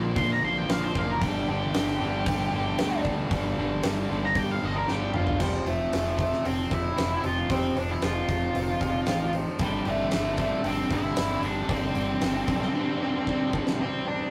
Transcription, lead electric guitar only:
0.17 0.29 C6 medium
0.33 0.44 A#5 medium
0.44 0.56 C6 medium
0.58 0.70 G5 medium
0.71 0.83 F5 medium
0.83 0.96 C5 medium
0.98 1.09 F5 medium
1.11 1.22 A#4 loud
1.23 1.48 G4 medium
1.49 3.01 G4 loud
4.25 4.38 A#5 medium
4.38 4.50 G5 medium
4.51 4.65 F5 medium
4.65 4.76 D#5 medium
4.76 4.88 A#4 medium
4.90 5.14 G4 loud
5.15 5.40 F4 loud
5.40 5.48 G3 medium
5.40 5.47 G4 medium
5.66 6.15 A3 medium
5.66 6.18 A4 medium
6.19 6.43 A3 medium
6.19 6.46 A4 medium
6.45 6.70 C4 medium
6.45 6.73 C5 medium
6.72 7.21 E4 medium
6.72 7.25 E5 loud
7.25 7.49 F4 medium
7.25 7.49 F5 medium
7.51 7.75 C4 medium
7.51 7.78 C5 medium
7.76 7.89 D4 medium
7.76 7.91 D5 medium
7.90 8.02 E4 medium
7.90 8.03 E5 medium
8.02 9.30 F4 medium
8.02 9.30 F5 medium
9.61 9.85 G3 medium
9.61 9.88 G4 medium
9.88 10.36 A3 medium
9.88 10.40 A4 medium
10.40 10.64 A3 medium
10.40 10.67 A4 medium
10.66 10.90 C4 medium
10.66 10.93 C5 loud
10.92 11.41 E4 medium
10.92 11.45 E5 loud
11.45 11.69 D4 medium
11.45 11.71 D5 medium
11.70 13.50 C4 medium
11.70 13.50 C5 medium
13.81 14.05 C4 medium
13.81 14.07 C5 medium
14.07 14.30 D4 medium
14.07 14.30 D5 medium

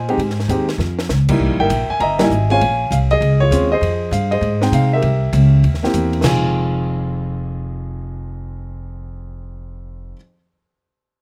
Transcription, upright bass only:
0.00 0.17 A#2 medium
0.17 0.47 G#2 medium
0.48 0.77 D#2 medium
0.78 1.08 F2 medium
1.09 1.39 C#2 medium
1.39 1.50 C2 medium
1.50 1.59 A#1 soft
1.60 1.69 G1 medium
1.70 1.87 A#1 medium
1.89 muted upright bass stroke soft
2.00 2.29 G1 medium
2.30 2.59 G#1 medium
2.61 2.90 A#1 medium
2.91 3.20 C2 medium
3.21 3.50 C#2 medium
3.51 3.80 D#2 medium
3.81 4.10 F2 medium
4.11 4.41 G2 medium
4.41 4.71 G#2 medium
4.72 5.01 C3 medium
5.02 5.32 C2 medium
5.33 5.62 C#2 medium
5.63 5.92 D#2 medium
5.93 6.22 E2 medium
6.23 10.11 F1 medium

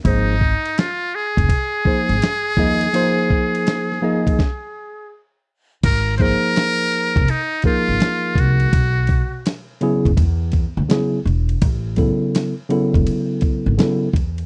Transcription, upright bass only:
0.05 0.52 G#1 loud
1.37 1.47 F1 medium
2.09 2.19 G#1 medium
2.57 2.86 D#2 medium
5.84 6.31 G#1 medium
7.16 7.26 F1 medium
7.88 7.98 G#1 medium
8.35 8.64 C2 medium
8.73 9.20 B1 medium
10.05 10.15 F#1 medium
10.17 10.64 E2 medium
10.77 10.87 D2 medium
11.25 11.54 E1 medium
11.62 12.09 A1 loud
12.94 13.04 E1 medium
13.66 13.76 G#1 medium
14.13 14.42 E2 medium

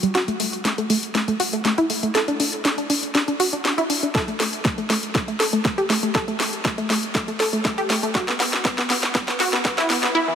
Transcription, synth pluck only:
0.03 0.10 G3 medium
0.15 0.22 F#4 loud
0.28 0.35 A3 medium
0.40 0.47 A3 medium
0.65 0.72 A3 medium
0.78 0.85 A3 medium
0.90 0.97 A3 medium
1.15 1.22 A3 medium
1.28 1.35 A3 medium
1.40 1.47 F#4 loud
1.53 1.60 A3 medium
1.65 1.72 A3 medium
1.78 1.85 E4 loud
1.90 1.97 A3 medium
2.03 2.10 A3 medium
2.15 2.22 A4 loud
2.28 2.35 D4 medium
2.40 2.47 D4 medium
2.65 2.72 D4 medium
2.78 2.85 D4 medium
2.90 2.97 D4 medium
3.15 3.22 D4 medium
3.28 3.35 D4 medium
3.40 3.47 F#4 medium
3.53 3.60 D4 medium
3.65 3.72 D4 medium
3.78 3.85 E4 medium
3.90 3.97 D4 medium
4.03 4.10 D4 medium
4.15 4.22 A4 loud
4.28 4.35 A3 medium
4.40 4.47 A3 medium
4.65 4.72 A3 medium
4.78 4.85 A3 medium
4.90 4.97 A3 medium
5.15 5.22 A3 medium
5.28 5.35 A3 medium
5.40 5.47 A4 medium
5.53 5.60 A3 medium
5.65 5.72 A3 medium
5.78 5.85 G4 medium
5.90 5.97 A3 medium
6.03 6.10 A3 medium
6.15 6.22 A4 loud
6.28 6.35 A3 medium
6.40 6.47 A3 medium
6.65 6.72 A3 medium
6.78 6.85 A3 medium
6.90 6.97 A3 medium
7.15 7.22 A3 medium
7.28 7.35 A3 medium
7.40 7.47 A4 medium
7.53 7.60 A3 medium
7.65 7.72 A3 medium
7.78 7.85 G4 loud
7.90 7.97 A3 medium
8.03 8.10 A3 medium
8.15 8.22 F#4 loud
8.28 8.35 B3 medium
8.40 8.47 B3 medium
8.65 8.72 B3 medium
8.78 8.85 B3 medium
8.90 8.97 B3 medium
9.15 9.22 B3 medium
9.28 9.35 B3 medium
9.40 9.47 F#4 loud
9.53 9.60 B3 medium
9.65 9.72 B3 medium
9.78 9.85 E4 loud
9.90 9.97 B3 medium
10.03 10.10 B3 medium
10.15 10.22 E4 loud
10.28 10.35 E3 medium

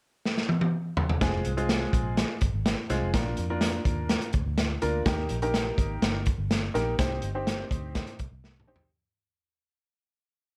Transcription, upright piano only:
1.21 1.50 G#3 medium
1.21 1.50 C4 medium
1.21 1.50 F4 medium
1.21 1.50 G#4 medium
1.57 2.34 G#3 medium
1.57 2.34 C4 medium
1.57 2.34 F4 medium
1.57 2.34 G#4 medium
2.90 3.09 G#3 medium
2.90 3.09 C4 medium
2.90 3.09 F4 medium
2.90 3.09 G#4 medium
3.14 3.43 A#3 medium
3.14 3.43 D4 medium
3.14 3.43 F4 medium
3.14 3.43 A#4 medium
3.50 4.27 A#3 medium
3.50 4.27 D4 medium
3.50 4.27 F4 medium
3.50 4.27 A#4 medium
4.82 5.01 A#3 medium
4.82 5.02 D4 medium
4.82 5.01 F4 medium
4.82 5.01 A#4 medium
5.06 5.35 A#3 medium
5.06 5.35 D#4 medium
5.06 5.35 G4 medium
5.06 5.35 A#4 medium
5.42 6.19 A#3 medium
5.42 6.19 D#4 medium
5.42 6.19 G4 medium
5.42 6.19 A#4 medium
6.74 6.94 A#3 medium
6.74 6.94 D#4 medium
6.74 6.94 G4 medium
6.74 6.94 A#4 medium
6.99 7.28 C4 medium
6.99 7.28 D#4 medium
6.99 7.28 G4 medium
6.99 7.28 C5 medium
7.35 8.12 C4 medium
7.35 8.12 D#4 medium
7.35 8.12 G4 medium
7.35 8.12 C5 medium
8.67 8.87 C4 medium
8.67 8.87 D#4 medium
8.67 8.87 G4 medium
8.67 8.87 C5 medium

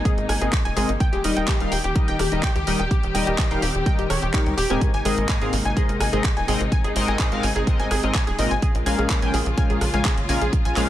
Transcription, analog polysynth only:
0.05 0.25 G#2 medium
0.05 0.25 G#3 medium
0.05 0.25 C4 medium
0.05 0.25 A#4 medium
0.05 0.25 D#5 medium
0.41 0.53 G#2 medium
0.41 0.53 G#3 medium
0.41 0.53 C4 medium
0.41 0.53 A#4 medium
0.41 0.53 D#5 medium
0.77 0.90 G#3 medium
0.77 0.90 C4 medium
0.77 0.90 A#4 medium
0.77 0.90 D#5 loud
1.24 1.58 G3 medium
1.24 1.58 D#4 medium
1.24 1.58 A#4 medium
1.24 1.58 D#5 loud
1.60 1.72 G3 loud
1.60 1.72 D#4 medium
1.60 1.72 A#4 medium
1.60 1.72 F5 loud
1.96 2.16 G3 medium
1.96 2.16 D#4 medium
1.96 2.16 A#4 medium
1.96 2.16 D#5 medium
2.32 2.44 G3 medium
2.32 2.44 D#4 medium
2.32 2.44 A#4 medium
2.32 2.44 D#5 medium
2.67 2.80 G3 medium
2.67 2.80 D#4 medium
2.67 2.80 A#4 medium
2.67 2.80 D#5 loud
3.15 3.48 G3 medium
3.15 3.48 D#4 medium
3.15 3.48 A#4 medium
3.15 3.48 D#5 loud
3.51 3.63 G3 medium
3.51 3.63 D#4 medium
3.51 3.63 A#4 medium
3.51 3.63 F5 loud
3.86 4.06 G3 medium
3.86 4.06 D#4 medium
3.86 4.06 A#4 medium
3.86 4.06 D#5 medium
4.34 4.54 G3 medium
4.34 4.54 D#4 medium
4.34 4.54 A#4 medium
4.34 4.54 C#5 loud
4.70 4.90 G#2 loud
4.70 4.90 G#3 medium
4.70 4.90 C4 medium
4.70 4.90 A#4 medium
4.70 4.90 G#5 loud
5.05 5.38 G#2 medium
5.05 5.39 G#3 medium
5.05 5.39 C4 medium
5.05 5.38 A#4 medium
5.05 5.39 D#5 loud
5.42 5.53 G#2 medium
5.42 5.54 G#3 medium
5.42 5.54 C4 medium
5.42 5.54 A#4 medium
5.42 5.53 F5 loud
5.77 5.97 G#2 medium
5.77 5.97 G#3 medium
5.77 5.97 C4 medium
5.77 5.97 A#4 medium
5.77 5.97 D#5 medium
6.13 6.25 G#2 medium
6.13 6.25 G#3 medium
6.13 6.25 C4 medium
6.13 6.25 A#4 medium
6.13 6.25 D#5 medium
6.48 6.61 G#2 medium
6.48 6.61 G#3 medium
6.48 6.61 C4 medium
6.48 6.61 A#4 medium
6.48 6.61 D#5 loud
6.96 7.29 G#2 medium
6.96 7.29 G#3 medium
6.96 7.29 C4 medium
6.96 7.29 A#4 medium
6.96 7.29 D#5 loud
7.32 7.44 G#2 medium
7.32 7.44 G#3 medium
7.32 7.44 C4 medium
7.32 7.44 A#4 medium
7.32 7.44 F5 loud
7.67 7.87 G#2 medium
7.67 7.87 G#3 medium
7.67 7.87 C4 medium
7.67 7.87 A#4 medium
7.67 7.87 D#5 medium
8.03 8.15 G#2 medium
8.03 8.15 G#3 medium
8.03 8.15 C4 medium
8.03 8.15 A#4 medium
8.03 8.15 D#5 medium
8.39 8.52 A#2 medium
8.39 8.52 G#3 medium
8.39 8.52 C4 medium
8.39 8.52 A#4 medium
8.39 8.52 D#5 loud
8.86 9.19 A#2 medium
8.86 9.19 G#3 medium
8.86 9.19 C#4 medium
8.86 9.19 A#4 medium
8.86 9.19 F5 loud
9.22 9.34 A#2 loud
9.22 9.34 G#3 medium
9.22 9.34 C#4 medium
9.22 9.34 A#4 medium
9.22 9.34 G5 loud
9.58 9.78 A#2 medium
9.58 9.78 G#3 medium
9.58 9.78 C#4 medium
9.58 9.78 A#4 medium
9.58 9.78 F5 medium
9.94 10.06 A#2 medium
9.94 10.06 G#3 medium
9.94 10.06 C#4 medium
9.94 10.06 A#4 medium
9.94 10.06 F5 medium
10.29 10.42 A#2 medium
10.29 10.42 G#3 medium
10.29 10.42 C#4 medium
10.29 10.42 A#4 medium
10.29 10.42 F5 loud
10.77 10.89 A#2 medium
10.77 10.89 G#3 medium
10.77 10.89 C#4 medium
10.77 10.89 A#4 medium
10.77 10.89 F5 loud

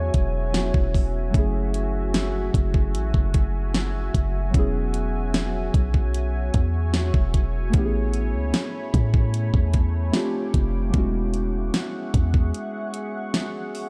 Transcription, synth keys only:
0.00 0.48 F#3 medium
0.00 0.49 B3 medium
0.00 0.50 C#4 medium
0.00 0.51 E4 medium
0.00 0.55 G#4 medium
0.52 1.29 F#3 medium
0.52 1.34 B3 medium
0.52 1.33 C#4 medium
0.52 1.35 E4 medium
0.57 1.35 F#4 medium
1.30 4.48 F#3 medium
1.30 4.49 A3 medium
1.34 4.50 C#4 medium
1.34 4.51 E4 medium
1.38 4.52 G#4 medium
4.50 7.68 F#3 medium
4.50 7.69 B3 medium
4.55 7.70 C#4 medium
4.55 7.71 E4 medium
4.59 7.72 G#4 medium
7.70 10.08 A3 medium
7.70 10.09 B3 medium
7.74 10.10 C#4 medium
7.74 10.11 E4 medium
7.78 7.83 G4 medium
7.85 10.15 G#4 medium
10.12 10.93 A3 medium
10.12 10.93 C4 medium
10.12 10.94 D4 medium
10.12 10.94 F4 medium
10.16 10.95 G4 medium
10.90 10.98 F#3 medium
10.90 13.89 B3 medium
10.94 13.89 G#3 medium
10.94 13.89 C#4 medium
10.94 13.89 E4 medium
10.98 13.89 F#4 medium

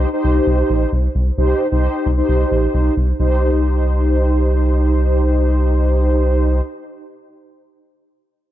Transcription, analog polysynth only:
0.13 0.90 D#4 medium
0.13 0.90 G4 medium
0.13 0.90 C5 loud
1.38 1.67 D#4 medium
1.38 1.67 G4 medium
1.38 1.67 C5 loud
1.72 2.10 D#4 medium
1.72 2.10 G4 medium
1.72 2.10 C5 loud
2.17 2.94 D#4 medium
2.17 2.94 G4 medium
2.17 2.94 C5 loud
3.19 6.61 D#4 medium
3.19 6.61 G4 medium
3.19 6.61 C5 medium

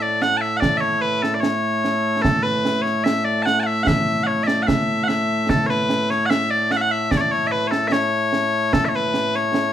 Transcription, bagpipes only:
0.00 9.73 A2 medium
0.00 9.73 A3 medium
0.00 0.22 D5 medium
0.22 0.37 F#5 loud
0.37 0.57 E5 medium
0.37 0.41 A5 medium
0.57 0.77 D5 loud
0.57 0.60 F#5 loud
0.77 1.01 C#5 medium
0.77 0.81 E5 medium
1.01 1.22 B4 medium
1.22 1.35 A4 medium
1.35 1.40 D5 medium
1.40 2.22 C#5 medium
2.22 2.43 A4 loud
2.43 2.82 B4 medium
2.82 3.04 C#5 medium
3.04 3.24 E5 loud
3.24 3.42 D5 medium
3.42 3.60 F#5 medium
3.42 3.46 A5 medium
3.60 3.66 F#5 medium
3.60 3.63 A5 medium
3.66 3.83 E5 medium
3.83 4.23 E5 loud
3.83 3.87 F#5 loud
4.23 4.44 C#5 medium
4.23 4.27 F#5 medium
4.44 4.62 D5 medium
4.44 4.47 E5 medium
4.62 4.67 F#5 medium
4.67 5.03 E5 medium
5.03 5.08 F#5 medium
5.08 5.50 E5 medium
5.50 5.66 A4 medium
5.66 6.10 B4 medium
5.66 5.70 C#5 medium
6.10 6.26 C#5 medium
6.26 6.50 E5 loud
6.26 6.30 F#5 loud
6.50 6.71 D5 medium
6.71 6.77 F#5 medium
6.77 6.81 E5 medium
6.81 6.91 F#5 loud
6.91 7.11 E5 medium
7.11 7.17 D5 medium
7.17 7.21 C#5 medium
7.17 7.32 D5 medium
7.32 7.47 C#5 medium
7.47 7.52 E5 medium
7.52 7.67 B4 medium
7.67 7.88 A4 medium
7.67 7.71 C#5 medium
7.88 7.92 E5 loud
7.92 8.73 C#5 loud
8.73 8.85 A4 loud
8.85 8.96 C#5 medium
8.85 8.89 E5 medium
8.96 9.36 B4 medium
9.36 9.73 C#5 medium

